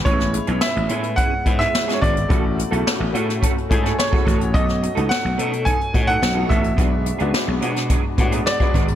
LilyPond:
<<
  \new Staff \with { instrumentName = "Grand piano" } { \time 4/4 \key a \major \tempo 4 = 107 cis''4 e''4 fis''8. e''8~ e''32 cis''32 d''8~ | d''4. r4. cis''4 | dis''4 fis''4 gis''8. fis''8. e''8~ | e''4. r4. d''4 | }
  \new Staff \with { instrumentName = "Clean electric guitar" } { \time 4/4 \key a \major <gis cis' e' gis'>16 r8 <gis cis' e' gis'>16 r8 <gis cis' e' gis'>16 r16 <gis cis' e' gis'>16 r8 <gis cis' e' gis'>16 r16 <gis cis' e' gis'>16 <gis cis' e' gis'>16 r16 | <a cis' fis' a'>16 r8 <a cis' fis' a'>16 r8 <a cis' fis' a'>16 r16 <a cis' fis' a'>16 r8 <a cis' fis' a'>16 r16 <a cis' fis' a'>16 <a cis' fis' a'>16 r16 | <fis b dis' a'>16 r8 <fis b dis' a'>16 r8 <fis b dis' a'>16 r16 <fis b dis' a'>16 r8 <fis b dis' a'>16 r16 <fis b dis' a'>16 <fis b dis' a'>16 r16 | <fis b d' gis'>16 r8 <fis b d' gis'>16 r8 <fis b d' gis'>16 r16 <fis b d' gis'>16 r8 <fis b d' gis'>16 r16 <fis b d' gis'>16 <fis b d' gis'>16 r16 | }
  \new Staff \with { instrumentName = "Grand piano" } { \time 4/4 \key a \major <gis b cis' e'>8 r16 <gis b cis' e'>8 r16 <gis b cis' e'>8. r16 <gis b cis' e'>8 r16 <gis b cis' fis'>8 r16 | <cis a e' fis'>8 r16 <cis a e' fis'>8 r16 <a cis' e' fis'>8. r16 <a cis' e' gis'>8 r16 <a cis' e' fis'>8 r16 | <a cis' dis' fis'>8 r16 <a cis' dis' fis'>8 r16 <a cis' dis' a'>8. r16 <a cis' dis' fis'>8 <a cis' dis' fis'>16 <a cis' dis' fis'>8 r16 | <gis b d' fis'>8 r16 <gis b d' fis'>8 r16 <gis b d' fis'>8. r16 <gis b d' fis'>8 r16 <gis b d' fis'>8 r16 | }
  \new Staff \with { instrumentName = "Slap bass" } { \clef bass \time 4/4 \key a \major a,,8. b,,16 r16 a,,16 a,8. r16 gis,8 r8 gis,,8 | a,,8. b,,16 r16 a,,16 a,8. r16 gis,8 r8 a,,8 | b,,8. cis,16 r16 b,,16 b,8. r16 a,8 b,,8 a,,8 | b,,8. cis,16 r16 b,,16 b,8. r16 a,8 r8 gis,,8 | }
  \new DrumStaff \with { instrumentName = "Drums" } \drummode { \time 4/4 <hh bd>16 <hh sn>16 hh16 hh16 sn16 hh16 hh16 hh16 <hh bd>8 <hh bd>16 <hh sn>16 sn16 sn16 <hh bd>16 hh16 | <hh bd>8 hh16 hh16 sn8 hh16 <hh sn>16 <hh bd>16 hh16 <hh bd>16 <hh sn>16 sn16 bd16 <hh bd>16 hh16 | <hh bd>16 <hh sn>16 hh16 hh16 sn16 hh16 hh16 hh16 <hh bd>16 hh16 <hh bd>16 hh16 sn8 <hh bd>16 hh16 | <hh bd>8 hh16 hh16 sn8 hh16 <hh sn>16 <hh bd>8 <hh bd>16 hh16 sn16 <hh bd>16 <hh bd>16 hh16 | }
>>